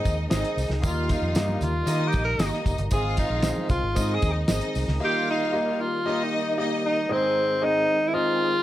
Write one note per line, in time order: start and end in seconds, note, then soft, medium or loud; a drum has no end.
0.00 7.06 D#3 medium
0.00 0.82 G#3 medium
0.00 0.12 C4 medium
0.00 0.82 C4 medium
0.00 0.28 D#4 loud
0.00 0.12 G#4 medium
0.00 0.82 G#4 medium
0.00 0.12 D#5 medium
0.00 0.28 D#5 loud
0.05 0.26 D#2 medium
0.05 kick loud
0.05 closed hi-hat medium
0.05 tambourine medium
0.05 high conga medium
0.30 0.42 G#1 medium
0.30 0.64 C4 medium
0.30 0.68 D#4 loud
0.30 0.64 G#4 medium
0.30 0.67 D#5 loud
0.30 0.64 D#5 loud
0.30 snare loud
0.30 closed hi-hat loud
0.30 tambourine loud
0.30 muted conga soft
0.30 high conga medium
0.45 closed hi-hat soft
0.45 muted conga soft
0.57 0.67 C2 loud
0.57 open hi-hat medium
0.57 tambourine medium
0.69 0.80 C#2 medium
0.69 snare soft
0.69 low conga medium
0.81 1.14 D#2 loud
0.81 1.57 D#3 medium
0.81 2.90 G3 medium
0.81 1.16 A#3 medium
0.81 2.90 A#3 medium
0.81 1.57 F4 loud
0.81 1.16 G4 medium
0.81 2.90 G4 medium
0.81 1.16 D#5 medium
0.81 1.57 F5 loud
0.81 kick loud
0.81 closed hi-hat medium
0.81 tambourine medium
0.81 muted conga soft
0.81 low conga medium
0.86 1.13 F4 medium
1.09 1.65 D#4 medium
1.09 kick loud
1.09 snare soft
1.09 closed hi-hat medium
1.09 tambourine soft
1.22 1.32 F2 medium
1.22 high conga soft
1.35 1.56 G2 loud
1.35 1.69 A#3 medium
1.35 1.69 G4 medium
1.35 1.69 D#5 medium
1.35 snare loud
1.35 closed hi-hat medium
1.35 tambourine loud
1.48 muted conga soft
1.48 high conga medium
1.61 1.82 D#2 medium
1.61 2.09 F4 loud
1.61 closed hi-hat medium
1.61 tambourine medium
1.61 low conga medium
1.86 2.15 D#3 loud
1.86 2.21 A#3 medium
1.86 2.36 D#4 loud
1.86 2.21 G4 medium
1.86 2.36 D#5 loud
1.86 2.21 D#5 medium
1.86 closed hi-hat medium
1.86 tambourine medium
1.86 muted conga soft
2.01 muted conga soft
2.07 2.24 G4 medium
2.13 2.34 A#1 loud
2.13 kick loud
2.13 closed hi-hat medium
2.13 tambourine medium
2.13 high conga medium
2.25 2.48 A#4 loud
2.38 2.49 G1 medium
2.38 2.73 A#3 medium
2.38 2.77 D#4 loud
2.38 2.73 G4 medium
2.38 2.73 D#5 medium
2.38 2.77 D#5 loud
2.38 snare loud
2.38 closed hi-hat loud
2.38 tambourine loud
2.38 muted conga soft
2.38 high conga medium
2.53 snare soft
2.53 muted conga soft
2.66 2.76 F1 medium
2.66 kick medium
2.66 closed hi-hat medium
2.66 tambourine medium
2.78 2.89 G1 medium
2.78 closed hi-hat medium
2.78 low conga medium
2.91 3.23 G#1 loud
2.91 3.66 G#2 medium
2.91 4.99 C4 medium
2.91 3.25 C4 medium
2.91 3.66 F4 loud
2.91 3.25 G#4 medium
2.91 3.17 G#4 loud
2.91 3.25 D#5 medium
2.91 3.66 F5 loud
2.91 kick loud
2.91 closed hi-hat medium
2.91 tambourine medium
2.91 muted conga soft
2.91 low conga medium
3.17 3.67 D#4 loud
3.17 kick medium
3.17 closed hi-hat medium
3.17 tambourine soft
3.30 3.51 A#1 medium
3.30 high conga medium
3.43 3.77 C4 medium
3.43 3.77 G#4 medium
3.43 3.77 D#5 medium
3.43 snare loud
3.43 closed hi-hat loud
3.43 tambourine loud
3.58 muted conga soft
3.58 high conga medium
3.69 3.80 C2 medium
3.69 4.16 F4 loud
3.69 kick medium
3.69 closed hi-hat medium
3.69 tambourine medium
3.69 low conga medium
3.83 3.93 G#1 medium
3.95 4.17 G#2 loud
3.95 4.29 C4 medium
3.95 4.46 D#4 loud
3.95 4.29 G#4 medium
3.95 4.29 D#5 medium
3.95 4.46 D#5 loud
3.95 kick medium
3.95 closed hi-hat medium
3.95 tambourine loud
3.95 muted conga soft
4.14 4.33 G#4 medium
4.22 4.43 D#2 loud
4.22 kick medium
4.22 closed hi-hat medium
4.22 tambourine medium
4.22 high conga medium
4.32 4.58 D#4 medium
4.48 4.60 G#1 loud
4.48 4.82 C4 medium
4.48 4.86 D#4 loud
4.48 4.82 G#4 medium
4.48 4.82 D#5 medium
4.48 4.86 D#5 loud
4.48 snare loud
4.48 closed hi-hat loud
4.48 tambourine loud
4.48 high conga medium
4.61 closed hi-hat soft
4.75 4.86 C2 loud
4.75 open hi-hat medium
4.75 tambourine medium
4.88 4.98 C#2 medium
4.88 snare soft
4.88 low conga medium
5.00 5.75 D#3 medium
5.00 7.08 G3 medium
5.00 5.34 A#3 medium
5.00 7.08 A#3 medium
5.00 5.75 F4 loud
5.00 5.34 G4 medium
5.00 5.34 D#5 medium
5.00 5.75 F5 loud
5.04 5.27 G4 loud
5.30 5.82 D#4 loud
5.53 5.86 A#3 medium
5.53 5.86 G4 medium
5.53 5.86 D#5 medium
5.81 6.25 F4 loud
6.05 6.39 A#3 medium
6.05 6.55 D#4 loud
6.05 6.38 G4 medium
6.05 6.55 D#5 loud
6.05 6.39 D#5 medium
6.24 6.41 D#4 medium
6.42 6.65 D#4 medium
6.57 6.91 A#3 medium
6.57 6.95 D#4 loud
6.57 6.91 G4 medium
6.57 6.94 D#5 loud
6.57 6.91 D#5 medium
6.86 7.14 D#4 loud
7.09 7.84 G#2 medium
7.09 8.63 D#3 medium
7.09 8.63 G#3 medium
7.09 7.43 C4 medium
7.09 8.63 C4 medium
7.09 7.66 C4 loud
7.09 7.43 D#4 medium
7.09 7.43 G#4 medium
7.09 8.63 G#4 medium
7.09 7.43 D#5 medium
7.62 7.95 C4 medium
7.62 7.95 D#4 medium
7.62 8.09 D#4 loud
7.62 7.95 G#4 medium
7.62 7.95 D#5 medium
8.08 8.16 E4 medium
8.13 8.47 C4 medium
8.13 8.47 D#4 medium
8.13 8.63 F4 loud
8.13 8.47 G#4 medium
8.13 8.47 D#5 medium